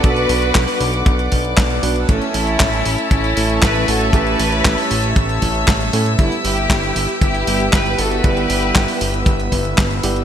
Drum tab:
HH |xxoxxooxxxoxxxox|xxoxxxoxxxoxxxox|xxoxxooxxxoxxxox|xxoxxxoxxxoxxxox|
CP |----x-------x---|----x-------x---|----x-------x---|----x-------x---|
SD |----o-------o---|----o-------o---|----o-------o---|----o-------o---|
BD |o---o---o-o-o---|o---o---o---o---|o---o---o-o-o---|o---o---o---o---|

HH |xxoxxooxxxoxxxox|
CP |----x-------x---|
SD |----o-------o---|
BD |o---o---o-o-o---|